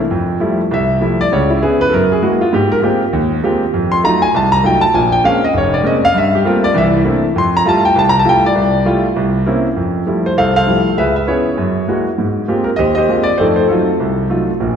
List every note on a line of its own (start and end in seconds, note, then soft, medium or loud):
0.10 0.36 F2 medium
0.40 0.60 F3 medium
0.40 0.60 G3 medium
0.40 0.60 A3 soft
0.40 0.60 E4 medium
0.71 0.97 C2 medium
0.71 1.17 E5 medium
1.01 1.20 F3 medium
1.01 1.20 G3 soft
1.01 1.21 A3 soft
1.01 1.21 E4 medium
1.21 1.31 D5 loud
1.32 1.57 C#2 medium
1.32 1.57 C#3 medium
1.32 1.50 C#5 medium
1.50 1.61 E4 medium
1.63 1.81 B3 medium
1.63 1.82 C#4 medium
1.63 1.82 E4 medium
1.63 1.80 G#4 medium
1.81 1.92 B4 loud
1.89 2.18 F#2 medium
1.89 1.91 A4 medium
1.94 2.10 A#4 medium
2.12 2.22 G#4 medium
2.22 2.41 G#3 medium
2.22 2.42 A#3 medium
2.22 2.42 E4 medium
2.22 2.42 F#4 medium
2.41 2.52 F4 medium
2.53 2.78 G#2 medium
2.53 2.71 G4 medium
2.72 2.78 A#4 loud
2.82 3.02 G#3 medium
2.82 3.02 A#3 medium
2.82 3.02 C4 medium
2.82 3.02 F4 medium
2.82 3.02 G4 medium
3.13 3.38 D#2 medium
3.43 3.62 G#3 medium
3.43 3.63 A#3 medium
3.43 3.63 C4 medium
3.43 3.63 F4 medium
3.43 3.63 G4 medium
3.74 3.99 F2 medium
3.92 4.03 C6 loud
4.03 4.23 F#3 medium
4.03 4.23 A3 medium
4.03 4.23 D#4 medium
4.03 4.23 F4 medium
4.03 4.22 A#5 loud
4.22 4.33 G#5 loud
4.34 4.59 C2 medium
4.34 4.53 A5 medium
4.52 4.63 A#5 loud
4.63 4.83 F#3 medium
4.63 4.83 A3 medium
4.63 4.83 D#4 medium
4.63 4.83 F4 medium
4.63 4.83 G5 medium
4.81 4.93 A5 loud
4.94 5.19 A#1 medium
4.94 5.19 A#2 medium
4.94 5.12 G#5 medium
5.12 5.23 G5 loud
5.24 5.43 G#3 medium
5.24 5.43 A#3 medium
5.24 5.43 C4 soft
5.24 5.44 C#4 medium
5.24 5.42 F5 medium
5.44 5.54 D#5 medium
5.54 5.80 F1 medium
5.54 5.74 C#5 medium
5.74 5.84 D5 medium
5.83 6.03 G#3 medium
5.83 6.04 A#3 medium
5.83 6.04 C4 medium
5.83 6.04 C#4 medium
5.83 6.03 D#5 medium
6.05 6.15 F5 loud
6.14 6.40 G2 medium
6.14 6.34 E5 medium
6.35 6.45 G4 medium
6.45 6.64 G3 medium
6.45 6.64 A3 medium
6.45 6.64 A#3 medium
6.45 6.65 C4 medium
6.45 6.65 F4 medium
6.45 6.64 A#4 medium
6.64 6.75 D5 loud
6.74 7.00 C2 medium
6.74 7.00 E3 medium
6.74 6.88 E5 loud
7.05 7.24 A3 medium
7.05 7.24 A#3 medium
7.05 7.24 C4 medium
7.05 7.24 D4 medium
7.05 7.24 E4 medium
7.36 7.61 F2 medium
7.36 7.54 C6 medium
7.57 7.66 A#5 loud
7.65 7.85 G3 medium
7.65 7.85 A3 medium
7.65 7.85 E4 medium
7.65 7.85 F4 medium
7.65 7.85 A5 loud
7.85 7.96 G5 medium
7.95 8.21 C2 medium
7.95 8.07 A5 loud
8.09 8.17 A#5 loud
8.19 8.27 A5 medium
8.25 8.45 G3 medium
8.25 8.45 A3 medium
8.25 8.45 E4 medium
8.25 8.45 F4 medium
8.25 8.45 G5 loud
8.46 8.84 D5 medium
8.55 8.81 C2 medium
8.85 9.05 G3 medium
8.85 9.05 A3 medium
8.85 9.05 E4 medium
8.85 9.05 F4 medium
9.16 9.42 C2 medium
9.46 9.66 A#3 medium
9.46 9.66 C4 medium
9.46 9.66 C#4 medium
9.46 9.66 E4 medium
9.76 10.02 F2 medium
10.07 10.26 F3 soft
10.07 10.26 G3 soft
10.07 10.26 A3 soft
10.07 10.27 E4 medium
10.26 10.36 C5 medium
10.37 10.63 C2 medium
10.37 10.55 A4 medium
10.37 10.55 C5 medium
10.37 10.54 F5 medium
10.56 10.95 A4 medium
10.56 10.95 C5 medium
10.56 10.99 F5 loud
10.67 10.86 F3 medium
10.67 10.86 G3 soft
10.67 10.87 A3 soft
10.67 10.87 E4 medium
10.97 11.23 C#2 medium
10.97 11.28 G#4 medium
10.97 11.54 B4 medium
10.97 11.15 E5 medium
11.16 11.27 E5 medium
11.27 11.47 B3 medium
11.27 11.47 C#4 soft
11.27 11.47 E4 medium
11.27 12.03 G#4 medium
11.27 12.02 C#5 medium
11.58 11.83 F#2 medium
11.88 12.07 G#3 medium
11.88 12.07 A#3 soft
11.88 12.08 E4 soft
11.88 12.08 F#4 medium
12.18 12.44 G#2 medium
12.48 12.68 G#3 medium
12.48 12.68 A#3 soft
12.48 12.68 C4 soft
12.48 12.68 F4 soft
12.48 12.68 G4 medium
12.64 12.69 A#4 medium
12.76 13.04 D#2 medium
12.76 12.96 G4 medium
12.76 12.96 C5 medium
12.76 12.93 D#5 medium
12.95 13.08 G4 medium
12.95 13.36 C5 medium
12.95 13.27 D#5 loud
13.09 13.28 G#3 soft
13.09 13.28 A#3 soft
13.09 13.28 C4 soft
13.09 13.29 F4 soft
13.09 13.29 G4 medium
13.23 13.37 D5 medium
13.38 13.65 F2 medium
13.38 13.65 A3 medium
13.38 13.69 D#4 medium
13.38 13.67 A4 medium
13.38 13.43 C5 medium
13.56 13.69 C5 medium
13.68 13.89 F#3 medium
13.68 13.89 A3 soft
13.68 13.89 D#4 soft
13.68 13.90 F4 medium
13.68 14.44 A4 medium
13.72 14.46 C4 soft
14.00 14.26 C2 medium
14.30 14.49 F#3 soft
14.30 14.49 A3 soft
14.30 14.49 D#4 soft
14.30 14.50 F4 medium
14.60 14.76 A#1 medium
14.60 14.76 A#2 medium